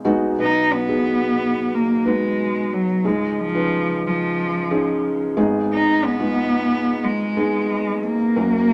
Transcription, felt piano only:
0.05 G#3 B3 D#4 F#4
0.38 B1 B2 B3 D#4 F#4 B4
0.89 B3 D#4 F#4 G#4
2.05 B3 D#4 F#4 B4
3.04 C#2 C#3 C#4 D#4 F4 G#4
3.55 C#4 D#4 F4 B4
4.71 C#4 D#4 F4 G#4
5.37 G#1 G#2 G#3 B3 D#4 G#4
6.20 G#3 B3 D#4 F4
7.37 G#3 B3 D#4 G#4
8.36 F#1 F#2 A#3 C#4 F#4 A#4

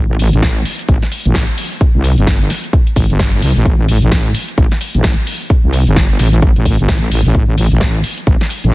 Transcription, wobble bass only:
Already playing: A1
0.33 A1
0.42 A1
0.89 A1
1.25 A1
1.95 C2
2.18 G1
2.96 A1
3.10 G1
3.42 C2
3.56 A1
3.65 A1
4.02 A1
4.12 A1
4.58 A1
4.95 A1
5.64 C2
5.87 G1
6.19 A1
6.56 A1
6.79 G1
6.89 A1
7.25 A1
7.35 A1
7.71 A1
7.81 A1
8.27 A1
8.64 A1

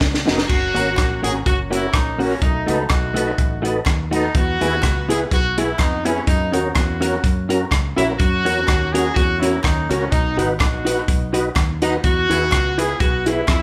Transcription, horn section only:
Already playing: D#3 F#3
0.27 D#4
0.48 A#3 C#4 F#4
1.23 G#4
1.46 A#3 C#4 F#4
1.72 E4
1.93 D#4
2.21 C#4
2.41 F#3 A3 D#4
2.68 D#4
2.91 A3 D#4 F#4
4.14 D#4
4.35 B3 F#4
5.10 G#4
5.32 B3 F#4
5.58 E4
5.78 D#4
6.05 C#4
6.27 F#3 A#3 D#4
6.53 D#4
6.75 A#3 C#4 F#4
7.97 E4
8.19 A#3 C#4 F#4
8.92 G#4
9.15 A#3 C#4 F#4
9.40 E4
9.63 D#4
9.89 C#4
10.10 F#3 B3 D#4
10.38 D#4
10.60 B3 D#4 F#4
11.83 D#4
12.05 B3 F#4
12.78 G#4
13.00 B3 F#4
13.27 E4
13.49 G#3 B3 E4

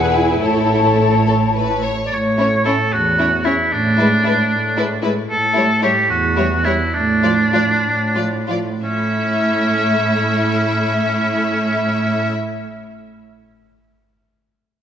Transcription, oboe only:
2.06 D5
2.13 C#5
2.65 A4
2.93 F#4
3.45 E4
3.72 D4
5.31 A4
5.83 G4
6.10 F#4
6.64 E4
6.94 D4
8.82 C#4

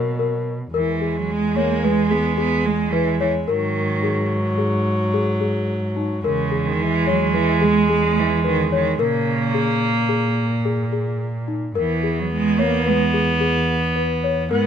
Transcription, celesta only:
0.19 A#4
0.74 A#4
1.01 G#4
1.56 C#5
1.83 B4
2.11 G#4
2.38 G#4
2.93 B4
3.20 C#5
3.48 A#4
4.03 G#4
4.58 G#4
5.14 G#4
5.41 G#4
5.96 D#4
6.24 A#4
6.51 G#4
7.07 C#5
7.34 B4
7.61 G#4
7.90 G#4
8.44 B4
8.72 C#5
8.99 A#4
9.54 G#4
10.09 G#4
10.65 G#4
10.92 G#4
11.48 D#4
11.75 A#4
12.03 G#4
12.59 C#5
12.86 B4
13.14 G#4
13.41 G#4
13.96 B4
14.24 C#5
14.51 A#4

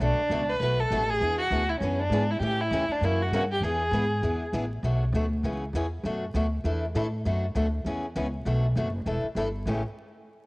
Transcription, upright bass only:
0.00 B1
0.30 C#2
0.60 B1
0.90 A1
1.21 E2
1.50 D2
1.81 F#2
2.10 G#2
2.40 A2
2.71 E2
2.88 muted upright bass stroke
3.01 F#2
3.31 G2
3.61 E2
3.91 G#2
4.22 E2
4.53 A1
4.83 B1
5.12 D2
5.43 C#2
5.73 E2
6.04 F#2
6.34 D2
6.64 E2
6.95 A2
7.25 F#2
7.55 D2
7.85 E2
8.15 C#2
8.45 B1
8.75 F#1
9.05 E1
9.23 muted upright bass stroke
9.35 G1
9.65 A1

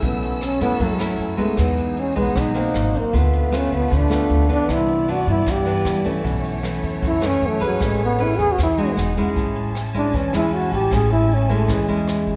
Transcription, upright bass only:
0.02 B1
0.60 F#2
0.80 F#2
1.19 F#2
1.58 E2
2.16 B1
2.35 B1
2.75 G#1
3.14 D2
3.72 D2
3.91 D2
4.30 D2
4.69 C2
5.27 G2
5.46 G2
5.85 G2
6.24 B1
6.83 F#2
7.02 F#2
7.41 F#2
7.80 A1
8.39 E2
8.58 E2
8.97 E1
9.36 A1
10.13 E2
10.33 E2
10.72 A1
10.91 A1
11.68 E2
11.89 E2
12.27 A1

